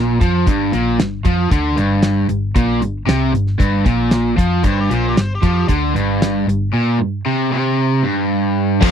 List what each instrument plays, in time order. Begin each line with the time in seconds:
Already playing: fingered electric bass A#1, overdriven electric guitar A#2
0.21 fingered electric bass F2, overdriven electric guitar F3, kick, closed hi-hat
0.47 fingered electric bass G1, overdriven electric guitar G2, kick, closed hi-hat
0.73 fingered electric bass A#1, overdriven electric guitar A#2, closed hi-hat
1.00 overdriven electric guitar G2, snare, closed hi-hat
1.25 fingered electric bass F2, overdriven electric guitar F3, kick, closed hi-hat
1.51 fingered electric bass D2, overdriven electric guitar D3, kick, closed hi-hat
1.76 fingered electric bass G1, overdriven electric guitar G2, closed hi-hat
2.03 snare, closed hi-hat
2.29 fingered electric bass G1, overdriven electric guitar G2, closed hi-hat
2.56 fingered electric bass A#1, overdriven electric guitar A#2, kick, closed hi-hat
2.81 fingered electric bass G1, overdriven electric guitar G2, closed hi-hat
3.06 fingered electric bass C2, overdriven electric guitar C3, snare, closed hi-hat
3.33 fingered electric bass G1, overdriven electric guitar G2, closed hi-hat
3.47 snare
3.59 fingered electric bass G1, overdriven electric guitar G2, kick, closed hi-hat
3.85 fingered electric bass A#1, overdriven electric guitar A#2, kick, closed hi-hat
4.11 snare, closed hi-hat
4.37 fingered electric bass F2, overdriven electric guitar F3, kick, closed hi-hat
4.64 fingered electric bass G1, overdriven electric guitar G2, lead electric guitar C5, kick, closed hi-hat
4.81 lead electric guitar G4
4.90 fingered electric bass A#1, overdriven electric guitar A#2, closed hi-hat
4.94 lead electric guitar C5
5.08 lead electric guitar G4
5.16 fingered electric bass G1, overdriven electric guitar G2, snare, closed hi-hat
5.21 lead electric guitar C5
5.35 lead electric guitar G4
5.43 fingered electric bass F2, overdriven electric guitar F3, kick, closed hi-hat
5.47 lead electric guitar G4
5.68 fingered electric bass D2, overdriven electric guitar D3, kick, closed hi-hat
5.95 fingered electric bass G1, overdriven electric guitar G2, closed hi-hat
6.22 snare, closed hi-hat
6.48 fingered electric bass G1, overdriven electric guitar G2, closed hi-hat
6.73 overdriven electric guitar A#2
6.99 overdriven electric guitar G2
7.26 overdriven electric guitar C3
7.53 overdriven electric guitar C3
8.04 overdriven electric guitar G2
8.82 fingered electric bass F1, overdriven electric guitar F2 C3 F3 A3 C4 F4 A4, kick, crash